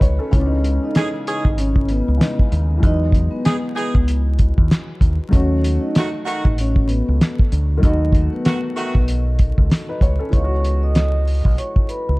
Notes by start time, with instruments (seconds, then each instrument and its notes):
Already playing: upright piano D#3 F#3 A3 D#4 B4
0.01 fingered electric bass C#2, upright piano C#5, kick, closed hi-hat
0.19 upright piano C#4 A4
0.31 fingered electric bass C#2, upright piano C#3 E3, vibraphone C#4 C#5, kick, closed hi-hat
0.35 upright piano G#3 B3
0.40 upright piano D4
0.46 upright piano D#4
0.64 closed hi-hat
0.84 vibraphone D#4 D#5
0.95 saxophone section E3 C#4 G#4, snare, closed hi-hat
1.27 saxophone section E3 C#4 G#4, closed hi-hat
1.45 fingered electric bass G#1, kick
1.58 vibraphone C#4 C#5, closed hi-hat
1.76 kick
1.89 vibraphone B3 B4, closed hi-hat
2.08 fingered electric bass C#2
2.17 upright piano C#3 G#3 B3 E4, snare, closed hi-hat
2.22 upright piano D#4
2.39 kick
2.52 fingered electric bass D#2, closed hi-hat
2.77 upright piano E3 F#3
2.82 fingered electric bass E2, upright piano G#3 B3, vibraphone D#4 D#5, kick, closed hi-hat
2.86 upright piano D#4
3.12 kick, closed hi-hat
3.31 vibraphone B3 B4
3.44 saxophone section E3 D#4 G#4, snare, closed hi-hat
3.76 saxophone section E3 D#4 G#4, closed hi-hat
3.95 fingered electric bass C#2, kick
4.08 closed hi-hat
4.39 kick, closed hi-hat
4.58 fingered electric bass D#2, kick
4.71 snare, closed hi-hat
5.01 fingered electric bass D#2, kick, closed hi-hat
5.29 upright piano F#3 A3
5.33 fingered electric bass D#2, vibraphone C#4 C#5, upright piano D#4 F#4, kick, closed hi-hat
5.64 closed hi-hat
5.80 vibraphone D#4 D#5
5.95 saxophone section D#3 A3 F#4, snare, closed hi-hat
6.25 saxophone section D#3 A3 F#4, closed hi-hat
6.45 fingered electric bass A1, kick
6.58 vibraphone C#4 C#5, closed hi-hat
6.76 kick
6.88 vibraphone B3 B4, closed hi-hat
7.08 fingered electric bass C#2
7.21 snare, closed hi-hat
7.39 kick
7.52 fingered electric bass D2, closed hi-hat
7.77 upright piano D#3 F#3
7.82 fingered electric bass D#2, upright piano A3 D#4, vibraphone D#4 D#5, kick, closed hi-hat
7.86 upright piano F#4
8.12 kick, closed hi-hat
8.33 vibraphone B3 B4
8.45 saxophone section D#3 A3 F#4, snare, closed hi-hat
8.75 saxophone section D#3 A3 F#4, closed hi-hat
8.95 fingered electric bass B1, kick
9.08 closed hi-hat
9.39 kick, closed hi-hat
9.58 fingered electric bass C#2, kick
9.71 snare, closed hi-hat
9.89 upright piano D#4 B4
10.01 fingered electric bass C#2, upright piano C#5, kick, closed hi-hat
10.19 upright piano C#4 A4
10.29 upright piano E3 G#3, vibraphone C#5 C#6, kick, closed hi-hat
10.33 fingered electric bass C#2, upright piano B3 D#4
10.38 upright piano F4
10.44 upright piano F#4
10.65 closed hi-hat
10.83 vibraphone D#5 D#6
10.95 snare, closed hi-hat
11.27 open hi-hat
11.45 fingered electric bass B1, kick
11.58 vibraphone C#5 C#6, closed hi-hat
11.76 kick
11.89 vibraphone B4 B5, closed hi-hat
12.09 fingered electric bass C#2